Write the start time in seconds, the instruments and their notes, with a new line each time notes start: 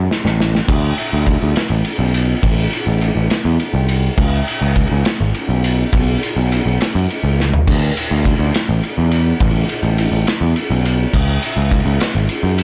0.11 snare
0.25 picked electric bass A1, snare
0.40 snare
0.55 snare
0.68 picked electric bass D2, kick, crash
0.98 ride
1.13 picked electric bass D2
1.27 kick, ride
1.43 picked electric bass D2
1.56 snare, ride
1.70 picked electric bass A1
1.85 ride
1.99 picked electric bass B1
2.14 ride
2.43 picked electric bass A1, kick, ride
2.73 ride
2.87 picked electric bass A1
3.01 ride
3.16 picked electric bass A1
3.30 snare, ride
3.45 picked electric bass E2
3.60 ride
3.74 picked electric bass C2
3.89 ride
4.18 picked electric bass C#2, kick, crash
4.48 ride
4.61 picked electric bass C#2
4.76 kick, ride
4.92 picked electric bass C#2
5.05 snare, ride
5.21 picked electric bass G#1
5.34 ride
5.49 picked electric bass B1
5.64 ride
5.93 picked electric bass B1, kick, ride
6.23 ride
6.36 picked electric bass B1
6.52 ride
6.66 picked electric bass B1
6.81 snare, ride
6.95 picked electric bass F#2
7.10 ride
7.24 picked electric bass C#2
7.40 snare
7.54 floor tom
7.68 picked electric bass D2, kick, crash
7.97 ride
8.11 picked electric bass D2
8.25 kick, ride
8.39 picked electric bass D2
8.54 snare, ride
8.69 picked electric bass A1
8.83 ride
8.98 picked electric bass E2
9.11 ride
9.40 picked electric bass A1, kick, ride
9.69 ride
9.83 picked electric bass A1
9.98 ride
10.12 picked electric bass A1
10.27 snare, ride
10.41 picked electric bass E2
10.56 ride
10.70 picked electric bass B1
10.85 ride
11.14 picked electric bass C#2, kick, crash
11.43 ride
11.57 picked electric bass C#2
11.71 kick, ride
11.86 picked electric bass C#2
12.00 snare, ride
12.15 picked electric bass G#1
12.29 ride
12.43 picked electric bass F#2
12.58 ride